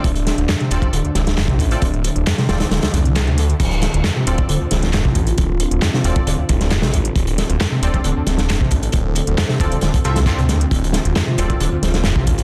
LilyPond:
<<
  \new Staff \with { instrumentName = "Synth stab" } { \time 4/4 \key d \minor \tempo 4 = 135 r4. <c' f' a' d''>2~ <c' f' a' d''>16 <c' f' a' d''>16 | r4. <c' f' a' d''>2~ <c' f' a' d''>16 r16 | r4. <c' f' a' d''>2~ <c' f' a' d''>16 r16 | r4. <c' f' a' d''>2~ <c' f' a' d''>16 r16 |
r4. <c' f' a' d''>2~ <c' f' a' d''>16 r16 | r4. <c' f' a' d''>4 <c' f' a' e''>16 r16 <c' f' a' d''>16 r8. | r4. <c' f' a' d''>2~ <c' f' a' d''>16 r16 | }
  \new Staff \with { instrumentName = "Analog synth pad" } { \time 4/4 \key d \minor << { e''1~ | e''1 | f'1~ | f'1 |
a'1~ | a'1 | f'1 | } \\ { <d d'>1~ | <d d'>1 | <d c'>1~ | <d c'>1~ |
<d c'>1~ | <d c'>1~ | <d c'>1 | } >> }
  \new Staff \with { instrumentName = "Acid bass" } { \clef bass \time 4/4 \key d \minor r8. d,16 f,16 c16 d,16 c,16 d16 d,16 c,16 d,16 f,16 c16 d,16 r16 | r8. d,16 f,16 c16 d,16 c,16 d16 d,16 e,16 f16 d,16 c16 d16 r16 | r8. d,16 f,16 c16 d,16 c,16 d16 d,16 c,16 d,16 f,16 c16 d,16 r16 | r8. d,16 f,16 c16 d,16 c,16 d16 d,16 c,16 d,16 f,16 c16 d,16 r16 |
r8. d,16 f,16 c16 d,16 c,16 d16 d,16 c,16 d,16 f,16 c16 d,16 r16 | r8. d,16 f,16 c16 d,16 c,16 d16 d,16 c,16 d,16 f,16 c16 d,16 r16 | r8. d,16 f,16 c16 d,16 c,16 d16 d,16 c,16 d,16 f,16 c16 d,16 r16 | }
  \new Staff \with { instrumentName = "Detuned saw bass" } { \clef bass \time 4/4 \key d \minor d,,8 r16 d,,16 r8 d,,16 r16 d,,16 r16 d,,8. a,,8 r16 | d,,8 r16 d,,16 r8 d,,16 r16 d,,16 r16 c,8. d,8 r16 | d,,8 r16 d,,16 r8 d,,16 r16 d,,16 r16 d,,8. a,,8 r16 | d,,8 r16 d,,16 r8 d,,16 r16 d,,16 r16 d,,8. a,,8 r16 |
d,,8 r16 d,,16 r8 d,,16 r16 d,,16 r16 d,,8. a,,8 r16 | d,,8 r16 d,,16 r8 d,,16 r16 d,,16 r16 c,8. d,8 r16 | d,,8 r16 d,,16 r8 d,,16 r16 d,,16 r16 d,,8. a,,8 r16 | }
  \new DrumStaff \with { instrumentName = "Drums" } \drummode { \time 4/4 <hh bd>16 hh16 <hh sn>16 hh16 <hc hh sn>16 hh16 hh16 <hh bd>16 hh16 hh16 <hh sn>16 <hh sn>16 <hc hh sn>16 <hh bd>16 <hh bd>16 hh16 | <hh bd>16 hh16 hh16 hh16 <hc hh sn>16 <hh sn>16 <hh sn>16 <hh sn>16 <hh sn>16 <hh sn>16 <hh sn>16 hh16 <hc hh sn>16 hh16 hh16 hh16 | <cymc hh bd>16 hh16 <hh sn>16 hh16 <hc hh sn>8 hh16 <hh bd>16 hh8 <hh sn>16 <hh sn>16 <hc hh sn>16 bd16 <hh bd>16 hh16 | <hh bd>8 hh16 hh16 <hc hh sn>16 sn16 hh16 <hh bd>16 hh8 <hh bd>16 <hh sn>16 <hc hh sn>16 <hh sn>16 hh16 hh16 |
<hh bd>16 hh16 <hh sn>16 hh16 <hc hh sn>8 hh16 <hh bd>16 hh8 <hh sn>16 <hh sn>16 <hc hh sn>16 bd16 <hh bd>16 hh16 | <hh bd>8 hh16 hh16 <hc hh sn>16 sn16 <hh bd>16 hh16 <hh sn>16 <hh bd>16 hh16 <hh sn>16 <hc hh bd>16 hh16 <hh sn>16 hh16 | <hh bd>16 hh16 <hh sn>16 hh16 <hc hh sn>8 hh16 <hh bd>16 hh8 <hh sn>16 <hh sn>16 <hc hh sn>16 bd16 <hh bd>16 hh16 | }
>>